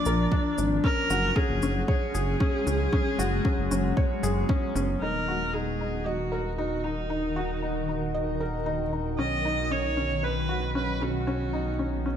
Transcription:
0.00 0.80 F3 medium
0.00 0.80 A#3 medium
0.00 0.32 D4 loud
0.00 0.80 D4 medium
0.00 0.86 F4 medium
0.00 0.54 D5 loud
0.00 0.86 D5 loud
0.05 0.27 A#1 medium
0.05 0.21 A#4 medium
0.05 shaker medium
0.32 0.47 D4 loud
0.32 kick loud
0.58 0.79 G#1 medium
0.58 0.83 D4 medium
0.58 shaker medium
0.84 4.98 F#3 medium
0.84 4.98 G#3 medium
0.84 2.91 C#4 medium
0.84 1.09 C#4 medium
0.84 1.37 A#4 loud
0.84 kick medium
1.10 1.31 F#1 medium
1.10 1.25 F#4 loud
1.10 shaker medium
1.36 1.61 C#4 medium
1.36 1.87 G#4 loud
1.36 kick loud
1.50 1.60 F#1 medium
1.62 1.84 F#1 medium
1.62 1.87 C#4 medium
1.62 shaker medium
1.87 4.45 G#4 loud
1.87 2.13 C#5 loud
1.87 kick loud
2.15 2.36 F#1 medium
2.15 2.29 G#4 medium
2.15 shaker medium
2.40 2.55 C#4 medium
2.40 kick loud
2.67 2.88 C#2 medium
2.67 2.91 C#4 medium
2.67 shaker medium
2.93 4.99 B3 medium
2.93 3.18 C#4 loud
2.93 kick medium
3.18 3.40 F#1 medium
3.18 3.34 F#4 loud
3.18 shaker medium
3.45 3.70 C#4 medium
3.45 kick medium
3.58 3.69 F#1 medium
3.71 3.92 F#1 medium
3.71 3.96 C#4 medium
3.71 shaker medium
3.97 4.22 C#5 loud
3.97 kick loud
4.23 4.44 F#1 medium
4.23 4.38 G#4 loud
4.23 shaker medium
4.49 4.64 C#4 loud
4.49 kick loud
4.75 4.96 F#1 medium
4.75 5.00 C#4 medium
4.75 shaker medium
5.00 9.16 D#1 medium
5.00 12.17 D#3 medium
5.00 9.15 D#4 medium
5.00 5.26 D#4 medium
5.00 9.15 F#4 medium
5.00 5.55 A#4 medium
5.00 9.15 A#4 medium
5.28 5.43 F#4 medium
5.53 5.79 D#4 medium
5.53 6.07 G#4 medium
5.81 6.05 D#4 medium
6.05 6.56 F#4 medium
6.05 6.31 D#5 medium
6.32 6.47 A#4 medium
6.57 6.73 D#4 medium
6.57 6.85 F#4 medium
6.84 7.88 D#4 medium
6.84 7.08 D#4 medium
7.10 7.35 D#4 medium
7.36 7.51 F#4 medium
7.62 7.87 D#4 medium
7.89 8.13 D#4 medium
8.14 8.39 D#5 medium
8.40 8.55 A#4 medium
8.66 8.81 D#4 medium
8.93 9.18 D#4 medium
9.18 12.17 B1 medium
9.18 12.17 B3 medium
9.18 11.25 C#4 medium
9.18 9.44 C#4 medium
9.18 9.73 D#5 medium
9.45 9.60 D#4 medium
9.71 9.96 C#4 medium
9.71 10.25 C#5 medium
9.97 10.22 C#4 medium
10.23 10.48 B4 medium
10.23 10.75 B4 medium
10.49 10.64 F#4 medium
10.75 10.90 C#4 medium
10.75 11.04 B4 medium
11.01 11.26 C#4 medium
11.01 12.06 F#4 medium
11.27 11.52 C#4 medium
11.27 12.17 D#4 medium
11.53 11.68 D#4 medium
11.79 12.04 C#4 medium
12.06 12.17 C#4 medium

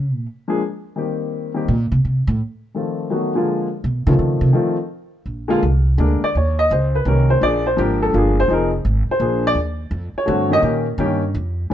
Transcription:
0.00 0.13 C#3 medium
0.13 0.25 A#2 medium
0.48 0.60 F3 medium
0.48 0.60 G#3 medium
0.48 0.60 A#3 medium
0.48 0.60 D4 medium
0.48 0.60 G#4 medium
0.96 1.51 D#3 medium
0.96 1.51 G3 soft
0.96 1.51 A#3 soft
0.96 1.52 C4 soft
0.96 1.52 G4 medium
1.54 1.66 D#3 medium
1.54 1.66 G3 medium
1.54 1.67 A#3 medium
1.54 1.67 C4 medium
1.54 1.68 G4 medium
1.68 1.91 A#2 medium
1.92 2.04 C3 medium
2.05 2.27 C3 medium
2.27 2.40 A2 medium
2.75 3.09 D#3 soft
2.75 3.11 F3 medium
2.75 3.10 A3 soft
2.75 3.12 C4 soft
2.75 3.12 F4 medium
3.10 3.32 D#3 medium
3.10 3.32 F#3 medium
3.10 3.32 A3 medium
3.10 3.33 B3 medium
3.10 3.33 F#4 medium
3.35 3.66 D3 medium
3.35 3.66 F3 medium
3.35 3.66 G#3 medium
3.35 3.67 A#3 medium
3.35 3.67 F4 medium
3.84 4.06 B2 medium
4.07 4.18 C#3 loud
4.07 4.51 D#3 medium
4.07 4.53 F3 medium
4.07 4.53 A3 medium
4.07 4.53 C4 medium
4.07 4.53 F4 medium
4.19 4.40 C#3 medium
4.41 4.49 C3 medium
4.53 4.75 D#3 medium
4.53 4.76 F3 medium
4.53 4.76 A3 medium
4.53 4.76 C4 medium
4.53 4.76 F4 medium
5.26 5.61 A#1 medium
5.48 5.60 D3 medium
5.48 5.60 G#3 medium
5.48 5.61 A#3 medium
5.48 5.61 F4 loud
5.63 5.97 C2 loud
5.98 6.20 D2 loud
5.98 6.19 D3 medium
5.98 6.19 G#3 medium
5.98 6.20 A#3 medium
5.98 6.20 D4 medium
5.98 6.22 A#4 medium
6.22 6.35 D5 loud
6.22 muted upright bass stroke soft
6.35 6.69 D#2 medium
6.35 6.58 C#5 medium
6.59 6.70 D#5 loud
6.71 7.05 C#2 loud
6.71 6.94 C5 medium
6.95 7.06 B4 medium
7.05 7.40 C2 medium
7.05 7.42 D#3 medium
7.05 7.41 A#3 medium
7.05 7.42 C#4 medium
7.05 7.42 G4 medium
7.05 7.30 A#4 medium
7.30 7.42 C5 medium
7.41 7.76 A#1 medium
7.41 7.62 F3 medium
7.41 7.63 A#3 medium
7.41 7.63 D4 medium
7.41 7.64 G#4 medium
7.41 7.65 D5 loud
7.67 7.78 C5 medium
7.77 8.13 G#1 loud
7.77 8.11 F3 medium
7.77 8.12 A#3 medium
7.77 8.12 D4 medium
7.77 8.13 G4 medium
7.77 8.02 A#4 medium
8.02 8.14 A4 medium
8.13 8.49 G1 loud
8.13 8.34 F3 medium
8.13 8.34 A#3 medium
8.13 8.35 D4 medium
8.13 8.35 F4 medium
8.18 8.38 G#4 medium
8.40 8.50 C5 loud
8.48 8.84 F1 medium
8.48 8.70 F3 medium
8.48 8.70 C4 medium
8.48 8.70 D#4 medium
8.48 8.71 G#4 medium
8.53 8.66 A#4 medium
8.85 9.07 G#1 loud
9.09 9.43 C5 medium
9.09 muted upright bass stroke soft
9.19 9.54 A#1 loud
9.19 9.56 F3 medium
9.19 9.57 A#3 medium
9.19 9.57 D4 medium
9.19 9.57 G#4 medium
9.47 9.58 D5 loud
9.55 9.90 D#2 medium
9.91 10.13 F2 loud
10.14 10.50 C#5 medium
10.14 muted upright bass stroke soft
10.26 10.62 G2 loud
10.26 10.48 D3 medium
10.26 10.48 A3 medium
10.26 10.49 C4 medium
10.26 10.49 F#4 medium
10.49 10.60 D#3 medium
10.49 10.61 A#3 medium
10.49 10.62 C#4 medium
10.49 10.63 G4 medium
10.49 10.60 D#5 loud
10.62 10.97 A#2 medium
10.62 10.84 D#3 medium
10.62 10.85 A#3 medium
10.62 10.85 C#4 medium
10.62 10.85 G4 medium
10.98 11.34 G2 loud
10.98 11.20 D#3 medium
10.98 11.21 A#3 medium
10.98 11.21 C#4 medium
10.98 11.21 G4 medium
11.34 11.70 F2 loud
11.70 11.74 E3 medium
11.70 11.74 A#3 medium

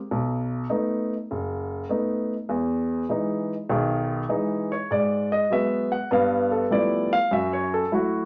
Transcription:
0.11 0.63 B1 medium
0.70 1.13 A3 soft
0.70 1.13 B3 soft
0.70 1.13 D#4 medium
1.31 1.83 F#1 medium
1.89 2.32 A3 soft
1.89 2.32 B3 soft
1.89 2.33 D#4 soft
2.49 3.02 E2 medium
3.09 3.52 E3 soft
3.09 3.53 G#3 soft
3.09 3.53 D#4 medium
3.69 4.22 B1 medium
3.69 4.22 D#3 medium
3.69 4.67 G#4 medium
4.29 4.72 E3 medium
4.29 4.73 G#3 soft
4.29 4.72 D#4 medium
4.72 4.90 C#5 medium
4.91 5.43 G#2 medium
4.91 5.30 D5 medium
5.32 5.50 D#5 medium
5.50 5.93 F#3 medium
5.50 5.93 G#3 soft
5.50 5.94 B3 medium
5.50 5.91 E5 medium
5.92 6.10 F#5 medium
6.11 6.63 G2 medium
6.11 6.63 B3 medium
6.11 6.51 F5 medium
6.51 6.70 A4 medium
6.71 7.13 F3 medium
6.71 7.13 G3 soft
6.71 7.13 A3 soft
6.71 7.13 B3 soft
6.71 7.13 E4 medium
6.71 7.11 D5 medium
7.13 7.31 F5 medium
7.31 7.83 F#2 medium
7.31 7.83 F#3 medium
7.31 7.51 E5 medium
7.53 7.71 C#5 medium
7.74 7.92 A4 medium
7.92 8.25 F#3 medium
7.92 8.25 A3 soft
7.92 8.25 E4 medium
7.92 8.25 F#4 medium

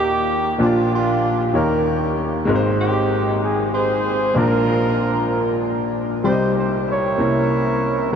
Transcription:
0.00 0.55 D#2 medium
0.00 0.55 D#3 medium
0.00 0.54 A#3 medium
0.00 0.56 A#3 medium
0.00 0.55 D#4 medium
0.00 0.56 D#4 medium
0.00 0.55 G4 soft
0.00 0.56 G4 medium
0.00 0.56 D#5 medium
0.58 1.50 A#1 medium
0.58 1.50 A#2 medium
0.58 1.52 A#3 medium
0.58 0.92 A#3 medium
0.58 1.53 D4 medium
0.58 0.91 D4 medium
0.58 1.54 F4 soft
0.58 0.92 F4 medium
0.58 0.66 C5 soft
0.66 1.57 D5 medium
0.93 1.50 A#3 medium
0.93 1.50 D4 medium
0.93 1.51 F4 medium
1.53 2.44 D#2 medium
1.53 2.44 D#3 soft
1.53 2.48 A#3 medium
1.53 2.45 C#4 medium
1.53 2.46 D#4 soft
1.53 2.48 G4 soft
1.53 2.44 G4 medium
1.53 2.25 A#4 medium
1.53 2.48 C#5 medium
2.45 4.32 G#1 medium
2.45 4.32 G#2 medium
2.45 4.31 G#3 medium
2.45 4.32 C4 medium
2.45 4.32 D#4 medium
2.45 2.55 A#4 medium
2.55 4.36 C5 medium
2.81 3.70 C4 medium
2.81 3.70 D#4 medium
2.81 3.39 G4 medium
3.42 3.71 G#4 medium
3.74 4.33 D#4 medium
3.74 4.33 G#4 medium
3.74 4.37 C5 medium
4.33 6.20 A#1 medium
4.33 6.20 A#2 medium
4.33 6.19 A#3 medium
4.33 6.20 D4 medium
4.33 5.58 D4 medium
4.33 6.20 F4 soft
4.33 5.58 F4 medium
4.33 5.62 A#4 medium
4.33 6.21 D5 medium
6.24 7.15 C2 medium
6.24 7.15 C3 medium
6.24 7.18 G3 medium
6.24 7.15 D#4 medium
6.24 7.14 G4 medium
6.24 7.19 G4 medium
6.24 6.53 C5 medium
6.24 6.31 D5 soft
6.32 7.22 D#5 medium
6.57 6.71 C5 medium
6.88 8.09 E4 medium
6.88 8.09 A#4 medium
6.88 8.09 C#5 medium
7.18 8.09 C2 medium
7.18 8.09 C3 soft
7.18 8.12 A#3 soft
7.18 8.11 C4 medium
7.18 8.12 C#4 soft
7.18 8.13 E4 soft

